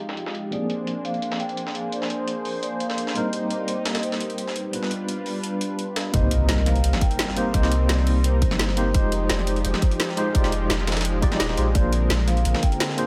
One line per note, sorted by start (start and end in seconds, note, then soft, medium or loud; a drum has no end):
0.00 0.50 F3 medium
0.00 0.49 G#3 medium
0.00 0.50 G#3 medium
0.00 0.50 C4 medium
0.00 0.50 D#4 medium
0.00 0.51 D#4 medium
0.00 0.49 F4 medium
0.00 0.49 G4 medium
0.00 0.51 G4 medium
0.09 snare soft
0.17 closed hi-hat medium
0.26 snare soft
0.35 closed hi-hat medium
0.51 3.13 F3 medium
0.51 3.13 A#3 medium
0.51 4.69 A#3 medium
0.51 3.14 C4 medium
0.51 3.13 D4 medium
0.51 3.14 D4 medium
0.51 3.13 G#4 medium
0.51 3.14 G#4 medium
0.51 4.69 C5 medium
0.51 1.01 D5 loud
0.51 closed hi-hat medium
0.70 closed hi-hat medium
0.87 closed hi-hat medium
1.05 1.41 F5 loud
1.05 closed hi-hat medium
1.14 closed hi-hat soft
1.22 closed hi-hat medium
1.32 snare medium
1.40 1.72 G5 loud
1.40 closed hi-hat medium
1.49 closed hi-hat soft
1.57 closed hi-hat medium
1.67 snare soft
1.75 1.93 F5 medium
1.75 closed hi-hat medium
1.92 2.29 D5 loud
1.92 closed hi-hat medium
2.02 snare soft
2.10 closed hi-hat medium
2.27 2.64 C5 medium
2.27 closed hi-hat medium
2.45 open hi-hat medium
2.63 2.79 D5 loud
2.63 closed hi-hat medium
2.80 3.13 F5 loud
2.80 closed hi-hat medium
2.90 snare soft
2.98 closed hi-hat medium
3.07 snare soft
3.14 4.71 G3 medium
3.14 4.71 A#3 medium
3.14 4.71 C4 medium
3.14 4.72 D#4 medium
3.14 4.72 G4 medium
3.14 4.72 A#4 medium
3.14 3.56 D#5 loud
3.14 closed hi-hat medium
3.33 closed hi-hat medium
3.50 closed hi-hat medium
3.59 3.67 D5 medium
3.67 3.95 C5 medium
3.67 closed hi-hat medium
3.85 snare loud
3.85 closed hi-hat medium
3.94 4.02 D#5 medium
3.94 snare loud
3.94 closed hi-hat medium
4.03 4.57 C5 loud
4.03 closed hi-hat medium
4.12 snare medium
4.20 closed hi-hat medium
4.30 closed hi-hat soft
4.38 closed hi-hat medium
4.47 snare soft
4.56 5.74 B4 medium
4.56 closed hi-hat medium
4.72 6.11 G3 medium
4.72 6.12 G3 medium
4.72 6.11 B3 medium
4.72 6.12 D4 medium
4.72 6.12 F4 medium
4.72 6.12 B4 medium
4.72 6.13 B4 medium
4.72 closed hi-hat medium
4.83 snare soft
4.91 closed hi-hat medium
5.08 closed hi-hat medium
5.26 open hi-hat medium
5.43 closed hi-hat medium
5.61 closed hi-hat medium
5.79 closed hi-hat medium
5.96 snare loud
5.96 closed hi-hat medium
6.12 6.47 C2 loud
6.12 8.92 G3 medium
6.12 7.34 A#3 medium
6.12 7.34 C4 medium
6.12 8.92 C4 medium
6.12 11.71 D#4 medium
6.12 7.34 D#4 medium
6.12 7.35 G4 medium
6.12 8.92 A#4 medium
6.12 7.35 C5 medium
6.12 6.68 D#5 loud
6.12 kick loud
6.12 closed hi-hat medium
6.12 closed hi-hat loud
6.12 impact medium
6.31 closed hi-hat medium
6.49 6.83 C2 loud
6.49 snare loud
6.49 closed hi-hat medium
6.58 snare soft
6.66 7.02 F5 loud
6.66 snare soft
6.66 closed hi-hat medium
6.76 closed hi-hat soft
6.84 6.92 C2 loud
6.84 closed hi-hat medium
6.93 snare medium
7.01 7.18 G5 loud
7.01 kick loud
7.01 closed hi-hat medium
7.11 closed hi-hat soft
7.19 snare loud
7.19 closed hi-hat loud
7.19 closed hi-hat medium
7.28 snare soft
7.36 7.51 A#3 medium
7.36 7.52 C4 medium
7.36 7.52 D#4 medium
7.36 7.52 G4 medium
7.36 7.53 C5 loud
7.36 7.55 F5 loud
7.36 closed hi-hat medium
7.53 7.88 C2 loud
7.53 8.74 A#3 medium
7.53 8.75 C4 medium
7.53 8.75 D#4 medium
7.53 8.75 G4 medium
7.53 8.76 C5 loud
7.53 7.90 D#5 loud
7.53 kick loud
7.53 closed hi-hat loud
7.53 closed hi-hat medium
7.63 snare soft
7.72 closed hi-hat medium
7.89 8.43 C2 loud
7.89 8.25 D5 medium
7.89 snare loud
7.89 closed hi-hat medium
7.99 snare soft
8.07 closed hi-hat medium
8.07 open hi-hat medium
8.24 8.76 C5 loud
8.24 closed hi-hat medium
8.24 closed hi-hat loud
8.42 8.93 G1 medium
8.42 kick loud
8.42 closed hi-hat medium
8.51 snare soft
8.51 snare medium
8.59 snare loud
8.59 closed hi-hat medium
8.69 snare soft
8.76 8.92 A#3 medium
8.76 8.92 C4 medium
8.76 8.93 D#4 medium
8.76 8.93 G4 medium
8.76 8.93 C5 medium
8.76 8.93 C5 loud
8.76 closed hi-hat medium
8.93 9.28 F1 loud
8.93 11.72 F3 medium
8.93 10.14 G#3 medium
8.93 13.07 G#3 medium
8.93 10.15 D#4 medium
8.93 10.15 F4 medium
8.93 11.72 G4 medium
8.93 10.16 G4 medium
8.93 10.16 C5 medium
8.93 9.27 D#5 loud
8.93 kick loud
8.93 closed hi-hat loud
8.93 closed hi-hat medium
9.12 closed hi-hat medium
9.30 9.63 F1 loud
9.30 9.66 D5 medium
9.30 snare loud
9.30 closed hi-hat medium
9.39 snare soft
9.47 closed hi-hat medium
9.56 closed hi-hat soft
9.65 9.73 F1 loud
9.65 10.31 C5 medium
9.65 closed hi-hat medium
9.74 snare medium
9.74 snare soft
9.82 kick loud
9.82 closed hi-hat medium
9.91 closed hi-hat soft
10.00 snare loud
10.00 closed hi-hat medium
10.09 snare soft
10.17 10.32 G#3 medium
10.17 10.33 D#4 medium
10.17 10.33 F4 medium
10.17 10.33 G4 medium
10.17 10.33 C5 loud
10.17 closed hi-hat medium
10.33 10.69 F1 loud
10.33 11.20 G#3 medium
10.33 11.21 D#4 medium
10.33 11.21 F4 medium
10.33 11.21 G4 medium
10.33 11.22 D5 loud
10.33 kick loud
10.33 closed hi-hat medium
10.44 snare soft
10.52 closed hi-hat medium
10.70 11.24 F1 loud
10.70 snare loud
10.70 closed hi-hat medium
10.79 snare soft
10.87 snare medium
10.87 snare soft
10.87 closed hi-hat medium
10.92 snare medium
10.92 closed hi-hat medium
10.97 snare medium
10.97 closed hi-hat medium
11.01 snare medium
11.01 closed hi-hat medium
11.05 closed hi-hat medium
11.22 11.31 G#1 loud
11.22 11.47 G#3 loud
11.22 11.47 D#4 medium
11.22 11.47 F4 medium
11.22 11.47 G4 medium
11.22 11.48 D5 loud
11.22 kick loud
11.22 closed hi-hat medium
11.32 snare soft
11.40 11.56 D#1 loud
11.40 snare loud
11.40 closed hi-hat medium
11.49 11.73 G#3 medium
11.49 11.73 D#4 medium
11.49 11.73 F4 medium
11.49 11.73 G4 medium
11.49 11.74 C5 medium
11.49 snare soft
11.57 11.73 A#1 medium
11.57 closed hi-hat medium
11.73 12.09 A#1 loud
11.73 13.07 D3 medium
11.73 12.95 A#3 medium
11.73 13.07 C4 medium
11.73 12.96 D4 medium
11.73 12.96 F4 medium
11.73 12.96 G#4 medium
11.73 13.07 A#4 medium
11.73 12.97 C5 medium
11.73 12.24 D5 loud
11.73 kick loud
11.73 closed hi-hat medium
11.93 closed hi-hat medium
12.10 12.44 A#1 loud
12.10 snare loud
12.10 closed hi-hat medium
12.19 snare soft
12.28 12.64 F5 loud
12.28 snare soft
12.28 closed hi-hat medium
12.37 closed hi-hat soft
12.45 12.54 A#1 loud
12.45 closed hi-hat loud
12.45 closed hi-hat medium
12.54 snare medium
12.54 snare soft
12.63 12.99 G5 loud
12.63 kick loud
12.63 closed hi-hat medium
12.72 closed hi-hat soft
12.80 snare loud
12.80 closed hi-hat medium
12.90 snare soft
12.97 13.07 A#3 medium
12.97 13.07 D4 medium
12.97 13.07 F4 medium
12.97 13.07 G#4 medium
12.97 13.07 C5 loud
12.97 13.07 F5 loud
12.97 closed hi-hat medium